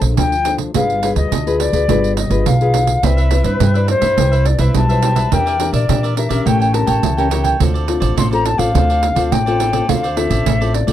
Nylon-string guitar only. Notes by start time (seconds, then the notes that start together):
Already playing: A#3 D4 A4 C5
0.18 F3 D4 A4 C5
0.45 D4 A4 C5
0.74 G3 F4 G#4 B4
1.03 F4 G#4 B4
1.32 D3
1.47 F4 G#4 B4
1.73 F4 G#4 B4
1.89 G3 F4 G#4 B4
2.31 F4 G#4 B4
2.46 D3
2.61 F4 G#4 B4
3.03 C4 E4 B4 D5
3.31 E4 B4 D5
3.61 G3
3.75 E4 B4 D5
4.18 C4 E4 B4 D5
4.59 E4 B4 D5
4.75 G3
4.90 E4 B4 D5
5.32 E3 D4 G4 A#4
5.60 D4 G4 A#4
5.89 E3 D4 G4 A#4
6.17 D4 G4 A#4
6.30 C#4 G4 A#4
6.46 A3
6.74 C#4 G4 A#4
7.03 E3
7.18 C#4 G4 A#4
7.31 C#4 G4 A#4
7.60 D3 C4 F4 A4
7.88 C4 F4 A4
8.17 A2
8.32 C4 F4 A4
8.58 C4 F4 A4
8.74 D3 C4 F4 A4
9.16 C4 F4 A4
9.32 A2
9.47 C4 F4 A4
9.73 C4 F4 A4
9.89 D3 C4 F4 A4
10.16 C4 F4 A4
10.46 A2
10.61 C4 F4 A4
10.87 C4 F4 A4